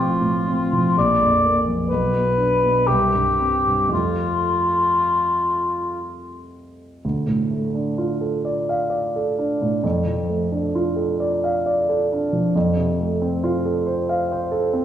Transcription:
Already playing: A1 A2 F3 C4 F4
0.21 A2
0.48 C4
0.73 F3
0.97 A#1 D5
1.21 F2
1.45 A#3
1.67 F2
1.89 B1 B4
2.13 B2
2.37 D4
2.63 B2
2.87 C2 G4
3.15 G2
3.40 C4
3.67 G2
3.88 F2 A3 C4 F4
3.93 F4
7.05 D2
7.27 A2
7.51 A3
7.74 D4
7.98 F4
8.21 A4
8.45 D5
8.69 F5
8.90 D5
9.16 A4
9.39 D4
9.62 A2
9.83 F2
10.07 F3
10.29 A3
10.52 D4
10.75 F4
10.96 A4
11.20 D5
11.44 F5
11.66 D5
11.89 A4
12.12 D4
12.33 F3
12.55 F2
12.76 C3
13.00 A3
13.22 C4
13.44 F4
13.65 A4
13.86 C5
14.09 F5
14.32 C5
14.52 A4
14.73 C4

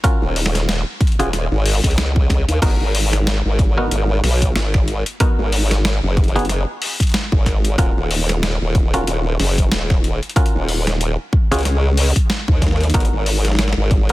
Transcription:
0.04 C#4 F4 F#4 A#4, kick, closed hi-hat
0.22 D#1
0.36 open hi-hat
0.46 snare
0.55 snare, closed hi-hat
0.69 snare, closed hi-hat
1.01 kick, closed hi-hat
1.07 closed hi-hat
1.12 closed hi-hat
1.19 D#1 C#4 F4 F#4 G#4, closed hi-hat
1.33 snare, closed hi-hat
1.51 G#1
1.66 open hi-hat
1.75 open hi-hat
1.84 C#2, kick, closed hi-hat, open hi-hat
1.91 open hi-hat
1.98 snare, closed hi-hat
2.16 kick
2.30 kick, snare, closed hi-hat
2.48 D#2, closed hi-hat
2.62 G#1 B3 D#4 F#4 A#4, kick, closed hi-hat, crash
2.81 G#1
2.95 open hi-hat
3.13 snare, closed hi-hat
3.27 snare, closed hi-hat
3.45 G#1
3.59 kick, closed hi-hat
3.77 B3 D#4 F#4 A#4
3.91 G#1, closed hi-hat
4.23 B1, snare, open hi-hat
4.42 kick, closed hi-hat
4.56 G#1, snare, closed hi-hat
4.74 kick, snare
4.88 closed hi-hat
5.06 closed hi-hat
5.20 B3 D#4 F#4 A#4, kick, closed hi-hat
5.39 G#1
5.52 open hi-hat
5.71 snare, closed hi-hat
5.85 snare, closed hi-hat
6.03 F#1
6.17 kick, closed hi-hat
6.24 closed hi-hat
6.28 closed hi-hat
6.36 B3 D#4 F#4 G#4, closed hi-hat
6.39 closed hi-hat
6.45 closed hi-hat
6.49 snare, closed hi-hat
6.82 open hi-hat
7.00 kick, closed hi-hat
7.02 closed hi-hat
7.07 closed hi-hat
7.09 closed hi-hat
7.12 snare, closed hi-hat
7.14 closed hi-hat
7.32 G#1, kick
7.46 kick, snare, closed hi-hat
7.65 closed hi-hat
7.78 D#1 C#4 F4 F#4 A#4, kick, closed hi-hat
7.97 D#1
8.11 open hi-hat
8.29 snare, closed hi-hat
8.43 snare, closed hi-hat
8.61 D#1
8.75 kick, closed hi-hat
8.94 C#4 F4 F#4 A#4, closed hi-hat
9.07 D#1, closed hi-hat
9.40 F#1, snare, open hi-hat
9.58 kick, closed hi-hat
9.72 D#1, snare, closed hi-hat
9.90 kick, snare
10.04 closed hi-hat
10.23 closed hi-hat
10.29 closed hi-hat
10.36 C#4 F4 F#4 A#4, kick, closed hi-hat
10.46 closed hi-hat
10.55 D#1
10.69 open hi-hat
10.87 snare, closed hi-hat
11.01 closed hi-hat
11.33 kick
11.51 C#2 C#4 F4 F#4 G#4, closed hi-hat
11.54 closed hi-hat
11.59 closed hi-hat
11.61 closed hi-hat
11.63 snare, closed hi-hat
11.65 closed hi-hat
11.97 open hi-hat
12.16 kick, closed hi-hat
12.30 snare, closed hi-hat
12.48 D#2, kick
12.62 kick, snare, closed hi-hat
12.67 snare
12.71 snare
12.76 snare
12.81 snare, closed hi-hat
12.83 snare, closed hi-hat
12.87 snare, closed hi-hat
12.91 G#1 B3 D#4 F#4 A#4, kick, snare, closed hi-hat
13.00 closed hi-hat
13.05 closed hi-hat
13.12 G#1
13.26 open hi-hat
13.45 snare, closed hi-hat
13.48 snare
13.52 snare
13.55 snare
13.59 snare, closed hi-hat
13.63 snare
13.68 snare
13.73 snare
13.77 G#1
13.91 kick, closed hi-hat
14.09 closed hi-hat

